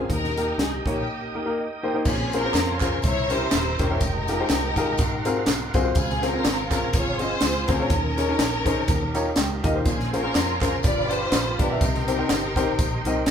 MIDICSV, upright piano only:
0, 0, Header, 1, 2, 480
1, 0, Start_track
1, 0, Tempo, 488202
1, 92, Time_signature, 4, 2, 24, 8
1, 13083, End_track
2, 0, Start_track
2, 0, Title_t, "Upright piano"
2, 0, Program_c, 0, 0
2, 91, Note_on_c, 0, 51, 61
2, 366, Note_on_c, 0, 58, 67
2, 367, Note_on_c, 0, 63, 64
2, 372, Note_on_c, 0, 70, 75
2, 374, Note_on_c, 0, 67, 63
2, 515, Note_off_c, 0, 58, 0
2, 515, Note_off_c, 0, 63, 0
2, 518, Note_off_c, 0, 70, 0
2, 519, Note_off_c, 0, 67, 0
2, 804, Note_off_c, 0, 51, 0
2, 849, Note_on_c, 0, 58, 67
2, 849, Note_on_c, 0, 63, 63
2, 850, Note_on_c, 0, 73, 77
2, 854, Note_on_c, 0, 67, 66
2, 997, Note_off_c, 0, 58, 0
2, 998, Note_off_c, 0, 63, 0
2, 998, Note_off_c, 0, 73, 0
2, 1000, Note_off_c, 0, 67, 0
2, 1327, Note_on_c, 0, 58, 64
2, 1327, Note_on_c, 0, 63, 59
2, 1328, Note_on_c, 0, 67, 62
2, 1331, Note_on_c, 0, 70, 77
2, 1401, Note_off_c, 0, 58, 0
2, 1401, Note_off_c, 0, 63, 0
2, 1402, Note_off_c, 0, 67, 0
2, 1404, Note_off_c, 0, 70, 0
2, 1429, Note_on_c, 0, 58, 78
2, 1432, Note_on_c, 0, 67, 67
2, 1433, Note_on_c, 0, 63, 66
2, 1436, Note_on_c, 0, 70, 82
2, 1541, Note_on_c, 0, 75, 66
2, 1593, Note_off_c, 0, 58, 0
2, 1594, Note_off_c, 0, 67, 0
2, 1595, Note_off_c, 0, 63, 0
2, 1596, Note_off_c, 0, 70, 0
2, 1789, Note_off_c, 0, 75, 0
2, 1801, Note_on_c, 0, 58, 78
2, 1802, Note_on_c, 0, 63, 68
2, 1803, Note_on_c, 0, 67, 70
2, 1804, Note_on_c, 0, 79, 63
2, 1809, Note_on_c, 0, 72, 87
2, 1879, Note_off_c, 0, 58, 0
2, 1880, Note_off_c, 0, 63, 0
2, 1880, Note_off_c, 0, 67, 0
2, 1883, Note_off_c, 0, 72, 0
2, 1907, Note_on_c, 0, 58, 70
2, 1907, Note_on_c, 0, 63, 67
2, 1908, Note_on_c, 0, 67, 66
2, 1915, Note_on_c, 0, 72, 76
2, 2003, Note_off_c, 0, 79, 0
2, 2016, Note_off_c, 0, 58, 0
2, 2016, Note_off_c, 0, 63, 0
2, 2016, Note_off_c, 0, 67, 0
2, 2020, Note_off_c, 0, 72, 0
2, 2027, Note_on_c, 0, 46, 64
2, 2300, Note_on_c, 0, 61, 77
2, 2300, Note_on_c, 0, 65, 63
2, 2302, Note_on_c, 0, 68, 64
2, 2302, Note_on_c, 0, 70, 69
2, 2305, Note_on_c, 0, 72, 79
2, 2369, Note_off_c, 0, 61, 0
2, 2369, Note_off_c, 0, 65, 0
2, 2370, Note_off_c, 0, 68, 0
2, 2370, Note_off_c, 0, 70, 0
2, 2371, Note_off_c, 0, 72, 0
2, 2398, Note_on_c, 0, 61, 60
2, 2400, Note_on_c, 0, 65, 61
2, 2401, Note_on_c, 0, 68, 58
2, 2403, Note_on_c, 0, 72, 68
2, 2404, Note_on_c, 0, 70, 61
2, 2558, Note_off_c, 0, 61, 0
2, 2559, Note_off_c, 0, 65, 0
2, 2560, Note_off_c, 0, 68, 0
2, 2561, Note_off_c, 0, 70, 0
2, 2561, Note_off_c, 0, 72, 0
2, 2733, Note_off_c, 0, 46, 0
2, 2770, Note_on_c, 0, 61, 73
2, 2771, Note_on_c, 0, 68, 66
2, 2771, Note_on_c, 0, 70, 66
2, 2773, Note_on_c, 0, 65, 63
2, 2774, Note_on_c, 0, 72, 84
2, 2919, Note_off_c, 0, 61, 0
2, 2920, Note_off_c, 0, 68, 0
2, 2920, Note_off_c, 0, 70, 0
2, 2921, Note_off_c, 0, 65, 0
2, 2921, Note_off_c, 0, 72, 0
2, 2987, Note_on_c, 0, 48, 60
2, 3248, Note_on_c, 0, 61, 74
2, 3249, Note_on_c, 0, 67, 65
2, 3250, Note_on_c, 0, 64, 64
2, 3250, Note_on_c, 0, 70, 63
2, 3250, Note_on_c, 0, 72, 76
2, 3398, Note_off_c, 0, 61, 0
2, 3399, Note_off_c, 0, 67, 0
2, 3399, Note_off_c, 0, 70, 0
2, 3399, Note_off_c, 0, 72, 0
2, 3400, Note_off_c, 0, 64, 0
2, 3692, Note_off_c, 0, 48, 0
2, 3730, Note_on_c, 0, 64, 62
2, 3732, Note_on_c, 0, 61, 77
2, 3736, Note_on_c, 0, 67, 68
2, 3736, Note_on_c, 0, 72, 78
2, 3737, Note_on_c, 0, 70, 70
2, 3804, Note_off_c, 0, 64, 0
2, 3805, Note_off_c, 0, 61, 0
2, 3807, Note_off_c, 0, 67, 0
2, 3807, Note_off_c, 0, 72, 0
2, 3808, Note_off_c, 0, 70, 0
2, 3833, Note_on_c, 0, 61, 66
2, 3840, Note_on_c, 0, 70, 61
2, 3841, Note_on_c, 0, 64, 65
2, 3841, Note_on_c, 0, 67, 59
2, 3845, Note_on_c, 0, 73, 75
2, 3939, Note_off_c, 0, 61, 0
2, 3942, Note_off_c, 0, 70, 0
2, 3943, Note_off_c, 0, 64, 0
2, 3943, Note_off_c, 0, 67, 0
2, 3945, Note_off_c, 0, 73, 0
2, 4213, Note_on_c, 0, 65, 66
2, 4218, Note_on_c, 0, 67, 68
2, 4219, Note_on_c, 0, 63, 69
2, 4220, Note_on_c, 0, 68, 68
2, 4224, Note_on_c, 0, 70, 85
2, 4285, Note_off_c, 0, 65, 0
2, 4288, Note_off_c, 0, 67, 0
2, 4289, Note_off_c, 0, 63, 0
2, 4289, Note_off_c, 0, 68, 0
2, 4291, Note_off_c, 0, 70, 0
2, 4325, Note_on_c, 0, 63, 78
2, 4326, Note_on_c, 0, 68, 69
2, 4329, Note_on_c, 0, 65, 70
2, 4329, Note_on_c, 0, 72, 84
2, 4330, Note_on_c, 0, 67, 73
2, 4481, Note_off_c, 0, 63, 0
2, 4482, Note_off_c, 0, 68, 0
2, 4483, Note_off_c, 0, 65, 0
2, 4483, Note_off_c, 0, 72, 0
2, 4484, Note_off_c, 0, 67, 0
2, 4690, Note_on_c, 0, 63, 91
2, 4692, Note_on_c, 0, 65, 78
2, 4692, Note_on_c, 0, 67, 78
2, 4694, Note_on_c, 0, 68, 79
2, 4698, Note_on_c, 0, 70, 102
2, 4839, Note_off_c, 0, 63, 0
2, 4840, Note_off_c, 0, 65, 0
2, 4840, Note_off_c, 0, 67, 0
2, 4841, Note_off_c, 0, 68, 0
2, 4843, Note_off_c, 0, 70, 0
2, 4904, Note_on_c, 0, 44, 78
2, 5165, Note_on_c, 0, 60, 91
2, 5168, Note_on_c, 0, 66, 75
2, 5168, Note_on_c, 0, 68, 78
2, 5170, Note_on_c, 0, 65, 79
2, 5174, Note_on_c, 0, 70, 100
2, 5316, Note_off_c, 0, 60, 0
2, 5317, Note_off_c, 0, 68, 0
2, 5318, Note_off_c, 0, 66, 0
2, 5319, Note_off_c, 0, 65, 0
2, 5321, Note_off_c, 0, 70, 0
2, 5609, Note_off_c, 0, 44, 0
2, 5649, Note_on_c, 0, 60, 88
2, 5650, Note_on_c, 0, 65, 86
2, 5650, Note_on_c, 0, 66, 86
2, 5650, Note_on_c, 0, 72, 90
2, 5653, Note_on_c, 0, 68, 83
2, 5723, Note_off_c, 0, 60, 0
2, 5723, Note_off_c, 0, 65, 0
2, 5723, Note_off_c, 0, 66, 0
2, 5723, Note_off_c, 0, 72, 0
2, 5724, Note_off_c, 0, 68, 0
2, 5739, Note_on_c, 0, 60, 66
2, 5741, Note_on_c, 0, 66, 56
2, 5743, Note_on_c, 0, 65, 60
2, 5744, Note_on_c, 0, 68, 62
2, 5746, Note_on_c, 0, 72, 76
2, 5851, Note_off_c, 0, 60, 0
2, 5852, Note_off_c, 0, 66, 0
2, 5852, Note_on_c, 0, 49, 67
2, 5853, Note_off_c, 0, 65, 0
2, 5854, Note_off_c, 0, 68, 0
2, 5855, Note_off_c, 0, 72, 0
2, 6121, Note_on_c, 0, 60, 76
2, 6123, Note_on_c, 0, 65, 71
2, 6125, Note_on_c, 0, 61, 67
2, 6125, Note_on_c, 0, 68, 68
2, 6126, Note_on_c, 0, 72, 81
2, 6198, Note_off_c, 0, 60, 0
2, 6199, Note_off_c, 0, 65, 0
2, 6200, Note_off_c, 0, 61, 0
2, 6200, Note_off_c, 0, 68, 0
2, 6201, Note_off_c, 0, 72, 0
2, 6224, Note_on_c, 0, 60, 65
2, 6226, Note_on_c, 0, 61, 57
2, 6226, Note_on_c, 0, 68, 57
2, 6227, Note_on_c, 0, 65, 63
2, 6228, Note_on_c, 0, 72, 70
2, 6390, Note_off_c, 0, 60, 0
2, 6391, Note_off_c, 0, 61, 0
2, 6391, Note_off_c, 0, 65, 0
2, 6391, Note_off_c, 0, 68, 0
2, 6392, Note_off_c, 0, 72, 0
2, 6562, Note_off_c, 0, 49, 0
2, 6595, Note_on_c, 0, 61, 72
2, 6598, Note_on_c, 0, 60, 69
2, 6599, Note_on_c, 0, 65, 71
2, 6599, Note_on_c, 0, 68, 64
2, 6603, Note_on_c, 0, 70, 88
2, 6750, Note_off_c, 0, 61, 0
2, 6751, Note_off_c, 0, 60, 0
2, 6752, Note_off_c, 0, 65, 0
2, 6752, Note_off_c, 0, 68, 0
2, 6754, Note_off_c, 0, 70, 0
2, 7067, Note_on_c, 0, 60, 72
2, 7073, Note_on_c, 0, 61, 67
2, 7074, Note_on_c, 0, 65, 63
2, 7075, Note_on_c, 0, 68, 65
2, 7079, Note_on_c, 0, 75, 81
2, 7226, Note_off_c, 0, 60, 0
2, 7229, Note_off_c, 0, 61, 0
2, 7229, Note_off_c, 0, 65, 0
2, 7229, Note_off_c, 0, 68, 0
2, 7232, Note_off_c, 0, 75, 0
2, 7554, Note_on_c, 0, 60, 76
2, 7557, Note_on_c, 0, 61, 70
2, 7560, Note_on_c, 0, 65, 73
2, 7562, Note_on_c, 0, 68, 68
2, 7565, Note_on_c, 0, 72, 86
2, 7633, Note_off_c, 0, 60, 0
2, 7635, Note_off_c, 0, 61, 0
2, 7636, Note_off_c, 0, 65, 0
2, 7637, Note_off_c, 0, 68, 0
2, 7639, Note_off_c, 0, 72, 0
2, 7659, Note_on_c, 0, 60, 61
2, 7663, Note_on_c, 0, 61, 59
2, 7665, Note_on_c, 0, 65, 60
2, 7666, Note_on_c, 0, 68, 62
2, 7668, Note_on_c, 0, 73, 73
2, 7767, Note_on_c, 0, 51, 69
2, 7769, Note_off_c, 0, 60, 0
2, 7771, Note_off_c, 0, 61, 0
2, 7772, Note_off_c, 0, 65, 0
2, 7773, Note_off_c, 0, 68, 0
2, 7774, Note_off_c, 0, 73, 0
2, 8038, Note_on_c, 0, 61, 80
2, 8039, Note_on_c, 0, 63, 68
2, 8041, Note_on_c, 0, 68, 70
2, 8041, Note_on_c, 0, 70, 71
2, 8045, Note_on_c, 0, 73, 85
2, 8115, Note_off_c, 0, 61, 0
2, 8116, Note_off_c, 0, 63, 0
2, 8116, Note_off_c, 0, 68, 0
2, 8116, Note_off_c, 0, 70, 0
2, 8118, Note_off_c, 0, 73, 0
2, 8142, Note_on_c, 0, 61, 80
2, 8147, Note_on_c, 0, 63, 74
2, 8148, Note_on_c, 0, 73, 87
2, 8149, Note_on_c, 0, 68, 70
2, 8150, Note_on_c, 0, 70, 78
2, 8307, Note_off_c, 0, 61, 0
2, 8309, Note_off_c, 0, 63, 0
2, 8310, Note_off_c, 0, 68, 0
2, 8310, Note_off_c, 0, 70, 0
2, 8310, Note_off_c, 0, 73, 0
2, 8478, Note_off_c, 0, 51, 0
2, 8508, Note_on_c, 0, 61, 89
2, 8508, Note_on_c, 0, 63, 81
2, 8510, Note_on_c, 0, 68, 79
2, 8513, Note_on_c, 0, 72, 90
2, 8515, Note_on_c, 0, 70, 78
2, 8665, Note_off_c, 0, 61, 0
2, 8665, Note_off_c, 0, 63, 0
2, 8666, Note_off_c, 0, 68, 0
2, 8667, Note_off_c, 0, 72, 0
2, 8668, Note_off_c, 0, 70, 0
2, 8727, Note_on_c, 0, 51, 74
2, 8992, Note_on_c, 0, 70, 76
2, 8993, Note_on_c, 0, 63, 84
2, 8993, Note_on_c, 0, 82, 65
2, 8994, Note_on_c, 0, 67, 80
2, 8995, Note_on_c, 0, 65, 77
2, 8996, Note_on_c, 0, 73, 87
2, 9146, Note_off_c, 0, 70, 0
2, 9147, Note_off_c, 0, 63, 0
2, 9147, Note_off_c, 0, 67, 0
2, 9148, Note_off_c, 0, 65, 0
2, 9148, Note_off_c, 0, 73, 0
2, 9193, Note_off_c, 0, 82, 0
2, 9209, Note_on_c, 0, 79, 72
2, 9437, Note_off_c, 0, 51, 0
2, 9459, Note_off_c, 0, 79, 0
2, 9469, Note_on_c, 0, 63, 83
2, 9473, Note_on_c, 0, 65, 82
2, 9475, Note_on_c, 0, 67, 75
2, 9476, Note_on_c, 0, 70, 78
2, 9477, Note_on_c, 0, 75, 103
2, 9549, Note_off_c, 0, 63, 0
2, 9551, Note_off_c, 0, 65, 0
2, 9552, Note_off_c, 0, 67, 0
2, 9552, Note_off_c, 0, 70, 0
2, 9554, Note_off_c, 0, 75, 0
2, 9580, Note_on_c, 0, 63, 60
2, 9581, Note_on_c, 0, 67, 57
2, 9584, Note_on_c, 0, 65, 61
2, 9586, Note_on_c, 0, 70, 58
2, 9591, Note_on_c, 0, 72, 73
2, 9688, Note_off_c, 0, 63, 0
2, 9689, Note_off_c, 0, 67, 0
2, 9690, Note_off_c, 0, 65, 0
2, 9691, Note_off_c, 0, 70, 0
2, 9693, Note_off_c, 0, 72, 0
2, 9693, Note_on_c, 0, 46, 67
2, 9962, Note_on_c, 0, 61, 74
2, 9962, Note_on_c, 0, 65, 70
2, 9962, Note_on_c, 0, 68, 67
2, 9967, Note_on_c, 0, 70, 64
2, 9968, Note_on_c, 0, 72, 77
2, 10035, Note_off_c, 0, 61, 0
2, 10035, Note_off_c, 0, 65, 0
2, 10036, Note_off_c, 0, 68, 0
2, 10038, Note_off_c, 0, 70, 0
2, 10038, Note_off_c, 0, 72, 0
2, 10059, Note_on_c, 0, 61, 67
2, 10063, Note_on_c, 0, 65, 59
2, 10063, Note_on_c, 0, 68, 58
2, 10063, Note_on_c, 0, 70, 60
2, 10068, Note_on_c, 0, 72, 67
2, 10223, Note_off_c, 0, 61, 0
2, 10225, Note_off_c, 0, 70, 0
2, 10226, Note_off_c, 0, 65, 0
2, 10226, Note_off_c, 0, 68, 0
2, 10228, Note_off_c, 0, 72, 0
2, 10399, Note_off_c, 0, 46, 0
2, 10434, Note_on_c, 0, 65, 73
2, 10435, Note_on_c, 0, 68, 64
2, 10437, Note_on_c, 0, 61, 68
2, 10439, Note_on_c, 0, 70, 62
2, 10442, Note_on_c, 0, 72, 80
2, 10586, Note_off_c, 0, 65, 0
2, 10587, Note_off_c, 0, 61, 0
2, 10587, Note_off_c, 0, 68, 0
2, 10589, Note_off_c, 0, 70, 0
2, 10590, Note_off_c, 0, 72, 0
2, 10648, Note_on_c, 0, 43, 58
2, 10904, Note_on_c, 0, 62, 73
2, 10907, Note_on_c, 0, 67, 66
2, 10909, Note_on_c, 0, 74, 72
2, 10910, Note_on_c, 0, 65, 66
2, 10910, Note_on_c, 0, 71, 65
2, 11061, Note_off_c, 0, 62, 0
2, 11062, Note_off_c, 0, 67, 0
2, 11063, Note_off_c, 0, 74, 0
2, 11064, Note_off_c, 0, 65, 0
2, 11064, Note_off_c, 0, 71, 0
2, 11357, Note_off_c, 0, 43, 0
2, 11395, Note_on_c, 0, 62, 73
2, 11395, Note_on_c, 0, 67, 68
2, 11396, Note_on_c, 0, 65, 65
2, 11399, Note_on_c, 0, 71, 70
2, 11399, Note_on_c, 0, 74, 82
2, 11471, Note_off_c, 0, 62, 0
2, 11471, Note_off_c, 0, 67, 0
2, 11472, Note_off_c, 0, 65, 0
2, 11473, Note_off_c, 0, 71, 0
2, 11473, Note_off_c, 0, 74, 0
2, 11509, Note_on_c, 0, 62, 68
2, 11509, Note_on_c, 0, 67, 64
2, 11511, Note_on_c, 0, 65, 58
2, 11511, Note_on_c, 0, 71, 64
2, 11511, Note_on_c, 0, 76, 73
2, 11611, Note_off_c, 0, 62, 0
2, 11611, Note_off_c, 0, 67, 0
2, 11612, Note_off_c, 0, 65, 0
2, 11612, Note_off_c, 0, 71, 0
2, 11612, Note_off_c, 0, 76, 0
2, 11614, Note_on_c, 0, 48, 69
2, 11873, Note_on_c, 0, 60, 77
2, 11878, Note_on_c, 0, 63, 67
2, 11878, Note_on_c, 0, 72, 82
2, 11880, Note_on_c, 0, 67, 74
2, 11880, Note_on_c, 0, 70, 65
2, 11950, Note_off_c, 0, 60, 0
2, 11952, Note_off_c, 0, 63, 0
2, 11952, Note_off_c, 0, 72, 0
2, 11953, Note_off_c, 0, 67, 0
2, 11953, Note_off_c, 0, 70, 0
2, 11976, Note_on_c, 0, 60, 77
2, 11977, Note_on_c, 0, 63, 72
2, 11977, Note_on_c, 0, 67, 65
2, 11982, Note_on_c, 0, 70, 74
2, 11984, Note_on_c, 0, 72, 86
2, 12141, Note_off_c, 0, 60, 0
2, 12142, Note_off_c, 0, 63, 0
2, 12142, Note_off_c, 0, 67, 0
2, 12144, Note_off_c, 0, 70, 0
2, 12145, Note_off_c, 0, 72, 0
2, 12319, Note_off_c, 0, 48, 0
2, 12352, Note_on_c, 0, 67, 85
2, 12354, Note_on_c, 0, 60, 86
2, 12356, Note_on_c, 0, 70, 83
2, 12358, Note_on_c, 0, 63, 84
2, 12358, Note_on_c, 0, 72, 98
2, 12504, Note_off_c, 0, 67, 0
2, 12505, Note_off_c, 0, 60, 0
2, 12506, Note_off_c, 0, 70, 0
2, 12507, Note_off_c, 0, 63, 0
2, 12507, Note_off_c, 0, 72, 0
2, 12839, Note_on_c, 0, 60, 84
2, 12843, Note_on_c, 0, 63, 80
2, 12845, Note_on_c, 0, 70, 81
2, 12847, Note_on_c, 0, 67, 77
2, 12847, Note_on_c, 0, 75, 90
2, 12988, Note_off_c, 0, 60, 0
2, 12990, Note_off_c, 0, 63, 0
2, 12991, Note_off_c, 0, 70, 0
2, 12992, Note_off_c, 0, 67, 0
2, 12992, Note_off_c, 0, 75, 0
2, 13083, End_track
0, 0, End_of_file